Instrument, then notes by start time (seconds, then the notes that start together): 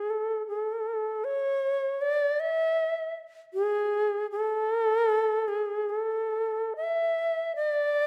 shakuhachi
Already playing: G#4
0.10 A4
0.48 A4
1.24 C#5
2.01 D5
2.40 E5
3.54 G#4
4.31 A4
5.48 G#4
5.90 A4
6.76 E5
7.56 D5